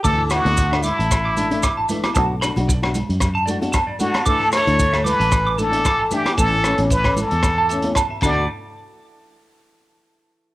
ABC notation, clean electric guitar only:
X:1
M:4/4
L:1/16
Q:"Swing 16ths" 1/4=114
K:D
V:1 name="Clean electric guitar"
d' a e z2 e d' a z d' a e d' a e d' | a z b z d z4 a d z a d z a | d' a e z2 e d' a z d' a e d' a e d' | a z c' z e z4 a e z a e [dfa]2 |
z16 |]